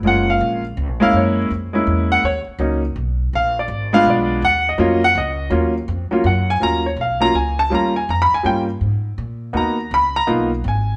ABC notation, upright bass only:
X:1
M:3/4
L:1/8
Q:"Swing" 1/4=164
K:Ebm
V:1 name="Upright bass" clef=bass
G,,,2 B,,,2 (3D,, B,,, G,,, | G,,2 F,,2 _F,,2 | ^D,, z _D,,2 =B,,,2 | B,,,2 A,,,2 C,,2 |
E,,2 F,,2 D,,2 | E,,2 F,, z G,,2 | E,,2 C,,2 D,,2 | E,,2 F,, z =G,,2 |
A,,2 B,,2 E,,2 | D,,2 C,,2 A,,,2 |]